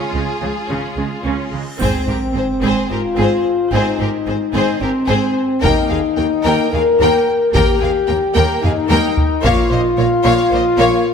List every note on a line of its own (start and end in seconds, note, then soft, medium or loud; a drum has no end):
0.00 0.12 C#4 soft
0.00 1.56 F4 medium
0.00 1.60 G#4 soft
0.00 reverse cymbal soft
0.13 0.22 C#2 soft
0.13 0.23 C#3 soft
0.13 0.21 G#3 soft
0.41 0.49 C#2 soft
0.41 0.50 C#3 soft
0.41 0.50 F3 soft
0.69 0.77 C#2 soft
0.69 0.78 C#3 soft
0.69 0.95 C#4 soft
0.97 1.05 C#2 soft
0.97 1.05 C#3 soft
0.97 1.06 G#3 soft
1.24 1.32 C#2 soft
1.24 1.33 C#3 soft
1.24 1.50 C#4 soft
1.52 1.60 C#2 soft
1.52 1.61 C#3 soft
1.52 1.60 G#3 soft
1.80 1.88 G#1 soft
1.80 1.89 G#2 soft
1.80 2.05 C4 soft
1.80 2.87 C4 medium
1.80 2.06 G#4 soft
1.80 2.06 C5 soft
1.80 taiko soft
1.80 sub drop soft
1.80 triangle soft
2.06 2.15 G#1 soft
2.06 2.15 G#2 soft
2.06 2.14 C4 soft
2.06 2.16 G4 soft
2.06 2.17 A#4 soft
2.33 2.43 G#1 soft
2.33 2.44 G#2 soft
2.33 2.41 C4 soft
2.33 2.43 G#4 soft
2.33 2.45 C5 soft
2.61 2.70 G#1 soft
2.61 2.71 G#2 medium
2.61 2.88 C4 soft
2.61 2.88 G#4 soft
2.65 2.90 C5 soft
2.89 2.99 G#1 soft
2.89 2.99 G#2 soft
2.89 2.97 C4 soft
2.89 3.73 F4 medium
2.89 3.00 G4 soft
2.89 3.00 A#4 soft
3.17 3.25 G#1 soft
3.17 3.26 G#2 soft
3.17 3.43 C4 soft
3.17 3.43 G#4 soft
3.17 3.45 C5 soft
3.71 3.80 G#1 soft
3.71 3.81 G#2 medium
3.71 3.97 C4 soft
3.71 4.82 D#4 medium
3.71 3.98 G#4 medium
3.71 3.99 C5 soft
3.99 4.07 G#1 soft
3.99 4.08 G#2 soft
3.99 4.07 C4 soft
3.99 4.08 G4 soft
3.99 4.09 A#4 soft
4.26 4.35 G#1 soft
4.26 4.35 G#2 soft
4.26 4.35 C4 soft
4.26 4.34 G#4 soft
4.26 4.37 C5 soft
4.54 4.62 G#1 soft
4.54 4.63 G#2 medium
4.54 4.79 C4 medium
4.54 4.79 G#4 medium
4.54 4.80 C5 soft
4.81 4.89 G#1 soft
4.81 4.90 G#2 soft
4.81 4.89 C4 soft
4.81 5.63 C4 medium
4.81 4.89 G4 soft
4.81 4.90 A#4 soft
5.07 5.16 G#1 soft
5.07 5.17 G#2 soft
5.07 5.33 C4 soft
5.07 5.33 G#4 medium
5.07 5.34 C5 medium
5.61 5.70 D#2 medium
5.61 5.71 D#2 medium
5.61 5.88 A#3 medium
5.61 6.72 D#4 medium
5.61 5.87 A#4 medium
5.61 5.88 G5 medium
5.61 taiko medium
5.90 5.98 D#2 soft
5.90 5.99 D#2 soft
5.90 5.98 A#3 soft
5.90 5.98 G#4 soft
5.90 5.98 F5 soft
6.17 6.25 D#2 soft
6.17 6.26 D#2 soft
6.17 6.25 A#3 soft
6.17 6.25 A#4 soft
6.17 6.25 G5 soft
6.43 6.53 D#2 medium
6.43 6.54 D#2 medium
6.43 6.71 A#3 medium
6.43 6.70 A#4 medium
6.43 6.71 G5 medium
6.71 6.82 D#2 soft
6.71 6.81 A#3 soft
6.71 6.81 G#4 soft
6.71 7.52 A#4 medium
6.71 6.82 F5 soft
7.00 7.08 D#2 medium
7.00 7.25 A#3 medium
7.00 7.26 A#4 medium
7.00 7.26 G5 medium
7.53 7.62 D#2 medium
7.53 7.63 D#2 medium
7.53 7.79 A#3 medium
7.53 8.46 G4 medium
7.53 7.79 A#4 medium
7.53 7.79 G5 medium
7.53 taiko medium
7.80 7.90 D#2 soft
7.80 7.89 A#3 soft
7.80 7.88 G#4 soft
7.80 7.91 F5 soft
8.07 8.17 D#2 soft
8.07 8.15 A#3 soft
8.07 8.16 A#4 soft
8.07 8.16 G5 soft
8.35 8.44 D#2 medium
8.35 8.45 D#2 medium
8.35 8.60 A#3 medium
8.35 8.60 A#4 medium
8.35 8.60 G5 medium
8.62 8.71 D#2 soft
8.62 8.70 A#3 medium
8.62 9.42 D#4 medium
8.62 8.71 G#4 soft
8.62 8.71 F5 soft
8.62 taiko low-mid medium
8.88 8.98 D#2 medium
8.88 9.14 A#3 medium
8.88 9.15 A#4 medium
8.88 9.15 G5 medium
8.88 taiko high medium
9.17 taiko low medium
9.43 9.52 A#1 medium
9.43 9.53 A#2 medium
9.43 9.68 A#3 medium
9.43 11.14 F4 loud
9.43 9.68 C#5 medium
9.43 9.69 F5 medium
9.43 taiko medium
9.70 9.79 A#1 soft
9.70 9.80 A#2 soft
9.70 9.79 A#3 soft
9.70 9.78 C5 soft
9.70 9.80 D#5 soft
9.97 10.05 A#1 soft
9.97 10.06 A#2 soft
9.97 10.05 A#3 soft
9.97 10.05 C#5 soft
9.97 10.08 F5 soft
10.23 10.32 A#1 medium
10.23 10.33 A#2 medium
10.23 10.50 A#3 medium
10.23 10.49 C#5 medium
10.23 10.51 F5 medium
10.51 10.60 A#1 soft
10.51 10.60 A#2 soft
10.51 10.60 A#3 soft
10.51 10.59 C5 soft
10.51 10.63 D#5 soft
10.78 10.87 A#1 medium
10.78 10.86 A#2 medium
10.78 11.03 A#3 medium
10.78 11.03 C#5 medium
10.78 11.04 F5 medium